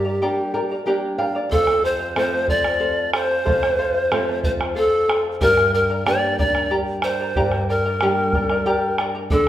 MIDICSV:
0, 0, Header, 1, 5, 480
1, 0, Start_track
1, 0, Key_signature, -2, "minor"
1, 0, Tempo, 649351
1, 1122, Time_signature, 3, 2, 24, 8
1, 7011, End_track
2, 0, Start_track
2, 0, Title_t, "Charango"
2, 0, Program_c, 0, 24
2, 35, Note_on_c, 0, 82, 42
2, 42, Note_on_c, 0, 74, 38
2, 46, Note_on_c, 0, 70, 36
2, 154, Note_off_c, 0, 70, 0
2, 158, Note_off_c, 0, 74, 0
2, 160, Note_off_c, 0, 82, 0
2, 161, Note_on_c, 0, 67, 63
2, 162, Note_on_c, 0, 79, 72
2, 163, Note_on_c, 0, 70, 70
2, 166, Note_on_c, 0, 74, 68
2, 168, Note_on_c, 0, 82, 82
2, 388, Note_off_c, 0, 79, 0
2, 392, Note_off_c, 0, 70, 0
2, 397, Note_off_c, 0, 74, 0
2, 397, Note_on_c, 0, 79, 53
2, 399, Note_off_c, 0, 82, 0
2, 401, Note_on_c, 0, 70, 54
2, 402, Note_off_c, 0, 67, 0
2, 406, Note_on_c, 0, 74, 52
2, 408, Note_on_c, 0, 82, 57
2, 519, Note_off_c, 0, 82, 0
2, 520, Note_off_c, 0, 79, 0
2, 522, Note_off_c, 0, 70, 0
2, 522, Note_off_c, 0, 74, 0
2, 528, Note_on_c, 0, 82, 42
2, 531, Note_on_c, 0, 74, 40
2, 536, Note_on_c, 0, 70, 40
2, 635, Note_off_c, 0, 70, 0
2, 637, Note_off_c, 0, 74, 0
2, 639, Note_off_c, 0, 82, 0
2, 640, Note_on_c, 0, 67, 77
2, 642, Note_on_c, 0, 79, 74
2, 644, Note_on_c, 0, 70, 70
2, 646, Note_on_c, 0, 74, 70
2, 648, Note_on_c, 0, 82, 78
2, 868, Note_off_c, 0, 79, 0
2, 872, Note_off_c, 0, 70, 0
2, 873, Note_off_c, 0, 74, 0
2, 877, Note_on_c, 0, 79, 65
2, 878, Note_off_c, 0, 82, 0
2, 881, Note_off_c, 0, 67, 0
2, 881, Note_on_c, 0, 70, 53
2, 881, Note_on_c, 0, 74, 55
2, 887, Note_on_c, 0, 82, 63
2, 987, Note_off_c, 0, 82, 0
2, 994, Note_off_c, 0, 74, 0
2, 996, Note_on_c, 0, 82, 44
2, 999, Note_off_c, 0, 70, 0
2, 1000, Note_off_c, 0, 79, 0
2, 1003, Note_on_c, 0, 74, 49
2, 1008, Note_on_c, 0, 70, 40
2, 1117, Note_off_c, 0, 70, 0
2, 1119, Note_off_c, 0, 82, 0
2, 1120, Note_on_c, 0, 69, 70
2, 1123, Note_off_c, 0, 74, 0
2, 1123, Note_on_c, 0, 72, 64
2, 1125, Note_on_c, 0, 77, 65
2, 1345, Note_off_c, 0, 69, 0
2, 1353, Note_off_c, 0, 72, 0
2, 1354, Note_off_c, 0, 77, 0
2, 1354, Note_on_c, 0, 69, 42
2, 1361, Note_on_c, 0, 72, 51
2, 1363, Note_on_c, 0, 77, 54
2, 1468, Note_off_c, 0, 77, 0
2, 1474, Note_off_c, 0, 72, 0
2, 1477, Note_on_c, 0, 77, 46
2, 1478, Note_off_c, 0, 69, 0
2, 1487, Note_on_c, 0, 72, 42
2, 1592, Note_off_c, 0, 72, 0
2, 1595, Note_off_c, 0, 77, 0
2, 1600, Note_on_c, 0, 69, 74
2, 1601, Note_on_c, 0, 72, 74
2, 1604, Note_on_c, 0, 77, 75
2, 1824, Note_off_c, 0, 69, 0
2, 1832, Note_off_c, 0, 72, 0
2, 1832, Note_on_c, 0, 69, 52
2, 1836, Note_off_c, 0, 77, 0
2, 1840, Note_on_c, 0, 72, 49
2, 1845, Note_on_c, 0, 77, 53
2, 1944, Note_off_c, 0, 77, 0
2, 1949, Note_off_c, 0, 72, 0
2, 1952, Note_on_c, 0, 77, 48
2, 1956, Note_off_c, 0, 69, 0
2, 1963, Note_on_c, 0, 72, 36
2, 2064, Note_off_c, 0, 72, 0
2, 2067, Note_off_c, 0, 77, 0
2, 2069, Note_on_c, 0, 69, 71
2, 2073, Note_on_c, 0, 72, 67
2, 2076, Note_on_c, 0, 77, 68
2, 2308, Note_off_c, 0, 69, 0
2, 2313, Note_off_c, 0, 72, 0
2, 2316, Note_off_c, 0, 77, 0
2, 2317, Note_on_c, 0, 69, 57
2, 2322, Note_on_c, 0, 72, 59
2, 2325, Note_on_c, 0, 77, 64
2, 2425, Note_off_c, 0, 77, 0
2, 2431, Note_off_c, 0, 72, 0
2, 2434, Note_on_c, 0, 77, 52
2, 2439, Note_off_c, 0, 69, 0
2, 2445, Note_on_c, 0, 72, 40
2, 2545, Note_off_c, 0, 72, 0
2, 2550, Note_off_c, 0, 77, 0
2, 2550, Note_on_c, 0, 69, 62
2, 2554, Note_on_c, 0, 72, 73
2, 2558, Note_on_c, 0, 77, 72
2, 2787, Note_off_c, 0, 69, 0
2, 2792, Note_off_c, 0, 72, 0
2, 2796, Note_on_c, 0, 69, 49
2, 2797, Note_off_c, 0, 77, 0
2, 2801, Note_on_c, 0, 72, 56
2, 2806, Note_on_c, 0, 77, 51
2, 2906, Note_off_c, 0, 77, 0
2, 2912, Note_off_c, 0, 72, 0
2, 2915, Note_on_c, 0, 77, 63
2, 2917, Note_off_c, 0, 69, 0
2, 2927, Note_on_c, 0, 72, 45
2, 3035, Note_off_c, 0, 72, 0
2, 3037, Note_off_c, 0, 77, 0
2, 3040, Note_on_c, 0, 69, 82
2, 3044, Note_on_c, 0, 72, 81
2, 3048, Note_on_c, 0, 77, 87
2, 3265, Note_off_c, 0, 69, 0
2, 3268, Note_off_c, 0, 72, 0
2, 3274, Note_on_c, 0, 69, 50
2, 3275, Note_off_c, 0, 77, 0
2, 3277, Note_on_c, 0, 72, 48
2, 3284, Note_on_c, 0, 77, 55
2, 3388, Note_off_c, 0, 77, 0
2, 3394, Note_off_c, 0, 72, 0
2, 3397, Note_off_c, 0, 69, 0
2, 3397, Note_on_c, 0, 77, 43
2, 3406, Note_on_c, 0, 72, 39
2, 3510, Note_off_c, 0, 72, 0
2, 3511, Note_on_c, 0, 69, 66
2, 3513, Note_off_c, 0, 77, 0
2, 3519, Note_on_c, 0, 72, 80
2, 3522, Note_on_c, 0, 77, 67
2, 3747, Note_off_c, 0, 69, 0
2, 3753, Note_off_c, 0, 72, 0
2, 3756, Note_on_c, 0, 69, 64
2, 3760, Note_off_c, 0, 77, 0
2, 3762, Note_on_c, 0, 72, 56
2, 3768, Note_on_c, 0, 77, 60
2, 3868, Note_off_c, 0, 77, 0
2, 3874, Note_off_c, 0, 72, 0
2, 3877, Note_off_c, 0, 69, 0
2, 3877, Note_on_c, 0, 77, 43
2, 3889, Note_on_c, 0, 72, 38
2, 3994, Note_off_c, 0, 72, 0
2, 3997, Note_on_c, 0, 67, 67
2, 3998, Note_off_c, 0, 77, 0
2, 4001, Note_on_c, 0, 79, 67
2, 4004, Note_on_c, 0, 70, 70
2, 4005, Note_on_c, 0, 74, 76
2, 4007, Note_on_c, 0, 82, 72
2, 4226, Note_off_c, 0, 79, 0
2, 4233, Note_off_c, 0, 70, 0
2, 4233, Note_off_c, 0, 74, 0
2, 4235, Note_on_c, 0, 79, 52
2, 4236, Note_off_c, 0, 82, 0
2, 4238, Note_off_c, 0, 67, 0
2, 4241, Note_on_c, 0, 70, 50
2, 4242, Note_on_c, 0, 74, 55
2, 4245, Note_on_c, 0, 82, 57
2, 4353, Note_off_c, 0, 82, 0
2, 4357, Note_off_c, 0, 79, 0
2, 4359, Note_off_c, 0, 74, 0
2, 4360, Note_off_c, 0, 70, 0
2, 4362, Note_on_c, 0, 82, 53
2, 4368, Note_on_c, 0, 74, 43
2, 4371, Note_on_c, 0, 70, 42
2, 4473, Note_off_c, 0, 70, 0
2, 4475, Note_off_c, 0, 74, 0
2, 4477, Note_off_c, 0, 82, 0
2, 4478, Note_on_c, 0, 67, 72
2, 4481, Note_on_c, 0, 79, 71
2, 4482, Note_on_c, 0, 70, 77
2, 4484, Note_on_c, 0, 74, 71
2, 4486, Note_on_c, 0, 82, 83
2, 4710, Note_off_c, 0, 79, 0
2, 4712, Note_off_c, 0, 70, 0
2, 4716, Note_off_c, 0, 74, 0
2, 4718, Note_off_c, 0, 82, 0
2, 4718, Note_on_c, 0, 79, 46
2, 4719, Note_off_c, 0, 67, 0
2, 4721, Note_on_c, 0, 70, 50
2, 4725, Note_on_c, 0, 74, 56
2, 4727, Note_on_c, 0, 82, 56
2, 4824, Note_off_c, 0, 82, 0
2, 4832, Note_off_c, 0, 74, 0
2, 4833, Note_on_c, 0, 82, 49
2, 4836, Note_off_c, 0, 70, 0
2, 4839, Note_off_c, 0, 79, 0
2, 4841, Note_on_c, 0, 74, 43
2, 4845, Note_on_c, 0, 70, 37
2, 4951, Note_off_c, 0, 70, 0
2, 4953, Note_off_c, 0, 74, 0
2, 4954, Note_off_c, 0, 82, 0
2, 4958, Note_on_c, 0, 67, 66
2, 4958, Note_on_c, 0, 79, 65
2, 4960, Note_on_c, 0, 70, 76
2, 4962, Note_on_c, 0, 74, 71
2, 4963, Note_on_c, 0, 82, 75
2, 5189, Note_off_c, 0, 79, 0
2, 5193, Note_off_c, 0, 70, 0
2, 5197, Note_off_c, 0, 74, 0
2, 5197, Note_off_c, 0, 82, 0
2, 5198, Note_on_c, 0, 79, 52
2, 5199, Note_off_c, 0, 67, 0
2, 5202, Note_on_c, 0, 70, 51
2, 5206, Note_on_c, 0, 74, 57
2, 5206, Note_on_c, 0, 82, 67
2, 5314, Note_off_c, 0, 82, 0
2, 5319, Note_off_c, 0, 79, 0
2, 5320, Note_off_c, 0, 74, 0
2, 5321, Note_off_c, 0, 70, 0
2, 5323, Note_on_c, 0, 82, 42
2, 5329, Note_on_c, 0, 74, 42
2, 5332, Note_on_c, 0, 70, 41
2, 5435, Note_off_c, 0, 74, 0
2, 5438, Note_off_c, 0, 70, 0
2, 5441, Note_off_c, 0, 82, 0
2, 5442, Note_on_c, 0, 67, 60
2, 5444, Note_on_c, 0, 74, 78
2, 5444, Note_on_c, 0, 79, 59
2, 5447, Note_on_c, 0, 70, 60
2, 5449, Note_on_c, 0, 82, 74
2, 5676, Note_off_c, 0, 79, 0
2, 5679, Note_off_c, 0, 70, 0
2, 5681, Note_off_c, 0, 67, 0
2, 5681, Note_off_c, 0, 74, 0
2, 5684, Note_on_c, 0, 79, 46
2, 5685, Note_off_c, 0, 82, 0
2, 5688, Note_on_c, 0, 70, 46
2, 5690, Note_on_c, 0, 74, 46
2, 5693, Note_on_c, 0, 82, 59
2, 5798, Note_off_c, 0, 82, 0
2, 5803, Note_off_c, 0, 79, 0
2, 5805, Note_off_c, 0, 70, 0
2, 5805, Note_off_c, 0, 74, 0
2, 5807, Note_on_c, 0, 82, 50
2, 5814, Note_on_c, 0, 74, 41
2, 5815, Note_on_c, 0, 70, 43
2, 5924, Note_off_c, 0, 82, 0
2, 5925, Note_off_c, 0, 70, 0
2, 5927, Note_off_c, 0, 74, 0
2, 5931, Note_on_c, 0, 67, 73
2, 5934, Note_on_c, 0, 70, 66
2, 5934, Note_on_c, 0, 79, 82
2, 5936, Note_on_c, 0, 74, 73
2, 5937, Note_on_c, 0, 82, 71
2, 6156, Note_off_c, 0, 79, 0
2, 6159, Note_off_c, 0, 70, 0
2, 6162, Note_off_c, 0, 74, 0
2, 6165, Note_off_c, 0, 82, 0
2, 6165, Note_on_c, 0, 79, 45
2, 6166, Note_off_c, 0, 67, 0
2, 6168, Note_on_c, 0, 70, 46
2, 6171, Note_on_c, 0, 74, 54
2, 6174, Note_on_c, 0, 82, 50
2, 6278, Note_off_c, 0, 82, 0
2, 6282, Note_off_c, 0, 74, 0
2, 6283, Note_off_c, 0, 79, 0
2, 6285, Note_off_c, 0, 70, 0
2, 6287, Note_on_c, 0, 82, 50
2, 6291, Note_on_c, 0, 74, 44
2, 6297, Note_on_c, 0, 70, 37
2, 6394, Note_off_c, 0, 70, 0
2, 6397, Note_off_c, 0, 74, 0
2, 6399, Note_off_c, 0, 82, 0
2, 6402, Note_on_c, 0, 67, 71
2, 6402, Note_on_c, 0, 79, 78
2, 6403, Note_on_c, 0, 70, 82
2, 6406, Note_on_c, 0, 74, 83
2, 6408, Note_on_c, 0, 82, 81
2, 6632, Note_off_c, 0, 79, 0
2, 6638, Note_off_c, 0, 70, 0
2, 6641, Note_off_c, 0, 74, 0
2, 6641, Note_on_c, 0, 79, 64
2, 6642, Note_off_c, 0, 67, 0
2, 6645, Note_off_c, 0, 82, 0
2, 6647, Note_on_c, 0, 70, 61
2, 6650, Note_on_c, 0, 74, 67
2, 6653, Note_on_c, 0, 82, 73
2, 6754, Note_off_c, 0, 82, 0
2, 6756, Note_off_c, 0, 74, 0
2, 6762, Note_off_c, 0, 79, 0
2, 6763, Note_off_c, 0, 70, 0
2, 6763, Note_on_c, 0, 82, 48
2, 6765, Note_on_c, 0, 74, 43
2, 6772, Note_on_c, 0, 70, 40
2, 6875, Note_off_c, 0, 74, 0
2, 6883, Note_off_c, 0, 82, 0
2, 6883, Note_on_c, 0, 69, 60
2, 6884, Note_on_c, 0, 74, 69
2, 6887, Note_off_c, 0, 70, 0
2, 6889, Note_on_c, 0, 78, 74
2, 7011, Note_off_c, 0, 69, 0
2, 7011, Note_off_c, 0, 74, 0
2, 7011, Note_off_c, 0, 78, 0
2, 7011, End_track
3, 0, Start_track
3, 0, Title_t, "Pan flute"
3, 0, Program_c, 1, 75
3, 0, Note_on_c, 1, 67, 66
3, 606, Note_off_c, 1, 67, 0
3, 1121, Note_on_c, 1, 69, 97
3, 1367, Note_on_c, 1, 72, 87
3, 1378, Note_off_c, 1, 69, 0
3, 1604, Note_off_c, 1, 72, 0
3, 1611, Note_on_c, 1, 72, 88
3, 1829, Note_off_c, 1, 72, 0
3, 1846, Note_on_c, 1, 74, 84
3, 2293, Note_off_c, 1, 74, 0
3, 2327, Note_on_c, 1, 72, 90
3, 3253, Note_off_c, 1, 72, 0
3, 3284, Note_on_c, 1, 72, 72
3, 3338, Note_off_c, 1, 72, 0
3, 3525, Note_on_c, 1, 69, 76
3, 3857, Note_off_c, 1, 69, 0
3, 4003, Note_on_c, 1, 70, 98
3, 4225, Note_off_c, 1, 70, 0
3, 4246, Note_on_c, 1, 70, 76
3, 4466, Note_off_c, 1, 70, 0
3, 4484, Note_on_c, 1, 74, 88
3, 4705, Note_off_c, 1, 74, 0
3, 4722, Note_on_c, 1, 74, 85
3, 4981, Note_off_c, 1, 74, 0
3, 5202, Note_on_c, 1, 72, 78
3, 5652, Note_off_c, 1, 72, 0
3, 5690, Note_on_c, 1, 70, 79
3, 6617, Note_off_c, 1, 70, 0
3, 6881, Note_on_c, 1, 69, 91
3, 7011, Note_off_c, 1, 69, 0
3, 7011, End_track
4, 0, Start_track
4, 0, Title_t, "Nylon-string guitar"
4, 0, Program_c, 2, 24
4, 0, Note_on_c, 2, 43, 59
4, 154, Note_off_c, 2, 43, 0
4, 165, Note_on_c, 2, 55, 43
4, 167, Note_on_c, 2, 58, 40
4, 174, Note_on_c, 2, 62, 46
4, 399, Note_on_c, 2, 70, 55
4, 548, Note_off_c, 2, 55, 0
4, 551, Note_off_c, 2, 58, 0
4, 552, Note_off_c, 2, 62, 0
4, 624, Note_off_c, 2, 70, 0
4, 633, Note_on_c, 2, 55, 41
4, 637, Note_on_c, 2, 58, 33
4, 639, Note_on_c, 2, 62, 43
4, 642, Note_on_c, 2, 74, 49
4, 864, Note_off_c, 2, 74, 0
4, 875, Note_on_c, 2, 77, 63
4, 1020, Note_off_c, 2, 55, 0
4, 1022, Note_off_c, 2, 58, 0
4, 1025, Note_off_c, 2, 62, 0
4, 1101, Note_off_c, 2, 77, 0
4, 1105, Note_on_c, 2, 41, 55
4, 1594, Note_on_c, 2, 53, 45
4, 1598, Note_on_c, 2, 60, 44
4, 1600, Note_on_c, 2, 57, 43
4, 2063, Note_off_c, 2, 53, 0
4, 2064, Note_off_c, 2, 60, 0
4, 2065, Note_off_c, 2, 57, 0
4, 2522, Note_off_c, 2, 41, 0
4, 2559, Note_on_c, 2, 41, 56
4, 3041, Note_on_c, 2, 53, 46
4, 3046, Note_on_c, 2, 60, 47
4, 3047, Note_on_c, 2, 57, 40
4, 3506, Note_off_c, 2, 53, 0
4, 3507, Note_off_c, 2, 57, 0
4, 3508, Note_off_c, 2, 60, 0
4, 3969, Note_off_c, 2, 41, 0
4, 4002, Note_on_c, 2, 43, 65
4, 4479, Note_on_c, 2, 55, 44
4, 4480, Note_on_c, 2, 58, 44
4, 4485, Note_on_c, 2, 62, 53
4, 4945, Note_off_c, 2, 55, 0
4, 4945, Note_off_c, 2, 58, 0
4, 4948, Note_off_c, 2, 62, 0
4, 5412, Note_off_c, 2, 43, 0
4, 5446, Note_on_c, 2, 43, 61
4, 5927, Note_on_c, 2, 55, 45
4, 5930, Note_on_c, 2, 58, 38
4, 5935, Note_on_c, 2, 62, 53
4, 6391, Note_off_c, 2, 55, 0
4, 6392, Note_off_c, 2, 58, 0
4, 6394, Note_off_c, 2, 62, 0
4, 6400, Note_on_c, 2, 79, 60
4, 6852, Note_off_c, 2, 79, 0
4, 6856, Note_off_c, 2, 43, 0
4, 6887, Note_on_c, 2, 50, 63
4, 7011, Note_off_c, 2, 50, 0
4, 7011, End_track
5, 0, Start_track
5, 0, Title_t, "Bombo"
5, 1124, Note_on_c, 9, 43, 64
5, 1198, Note_off_c, 9, 43, 0
5, 1236, Note_on_c, 9, 37, 52
5, 1310, Note_off_c, 9, 37, 0
5, 1480, Note_on_c, 9, 37, 21
5, 1554, Note_off_c, 9, 37, 0
5, 1599, Note_on_c, 9, 37, 66
5, 1673, Note_off_c, 9, 37, 0
5, 1716, Note_on_c, 9, 37, 20
5, 1790, Note_off_c, 9, 37, 0
5, 1833, Note_on_c, 9, 43, 55
5, 1907, Note_off_c, 9, 43, 0
5, 1955, Note_on_c, 9, 37, 56
5, 2029, Note_off_c, 9, 37, 0
5, 2317, Note_on_c, 9, 37, 68
5, 2391, Note_off_c, 9, 37, 0
5, 2563, Note_on_c, 9, 43, 66
5, 2637, Note_off_c, 9, 43, 0
5, 2683, Note_on_c, 9, 37, 51
5, 2757, Note_off_c, 9, 37, 0
5, 3044, Note_on_c, 9, 37, 63
5, 3118, Note_off_c, 9, 37, 0
5, 3171, Note_on_c, 9, 37, 18
5, 3245, Note_off_c, 9, 37, 0
5, 3279, Note_on_c, 9, 43, 60
5, 3353, Note_off_c, 9, 43, 0
5, 3405, Note_on_c, 9, 37, 59
5, 3479, Note_off_c, 9, 37, 0
5, 3766, Note_on_c, 9, 37, 67
5, 3840, Note_off_c, 9, 37, 0
5, 3999, Note_on_c, 9, 43, 61
5, 4073, Note_off_c, 9, 43, 0
5, 4121, Note_on_c, 9, 37, 48
5, 4195, Note_off_c, 9, 37, 0
5, 4368, Note_on_c, 9, 37, 21
5, 4442, Note_off_c, 9, 37, 0
5, 4484, Note_on_c, 9, 37, 73
5, 4558, Note_off_c, 9, 37, 0
5, 4606, Note_on_c, 9, 37, 20
5, 4680, Note_off_c, 9, 37, 0
5, 4725, Note_on_c, 9, 43, 65
5, 4799, Note_off_c, 9, 43, 0
5, 4840, Note_on_c, 9, 37, 49
5, 4914, Note_off_c, 9, 37, 0
5, 5190, Note_on_c, 9, 37, 67
5, 5264, Note_off_c, 9, 37, 0
5, 5439, Note_on_c, 9, 43, 60
5, 5513, Note_off_c, 9, 43, 0
5, 5555, Note_on_c, 9, 37, 46
5, 5629, Note_off_c, 9, 37, 0
5, 5804, Note_on_c, 9, 37, 20
5, 5878, Note_off_c, 9, 37, 0
5, 5918, Note_on_c, 9, 37, 63
5, 5992, Note_off_c, 9, 37, 0
5, 6037, Note_on_c, 9, 37, 19
5, 6111, Note_off_c, 9, 37, 0
5, 6156, Note_on_c, 9, 37, 20
5, 6156, Note_on_c, 9, 43, 64
5, 6229, Note_off_c, 9, 37, 0
5, 6229, Note_off_c, 9, 43, 0
5, 6280, Note_on_c, 9, 37, 48
5, 6354, Note_off_c, 9, 37, 0
5, 6641, Note_on_c, 9, 37, 61
5, 6715, Note_off_c, 9, 37, 0
5, 6758, Note_on_c, 9, 37, 18
5, 6832, Note_off_c, 9, 37, 0
5, 6877, Note_on_c, 9, 43, 72
5, 6951, Note_off_c, 9, 43, 0
5, 7011, End_track
0, 0, End_of_file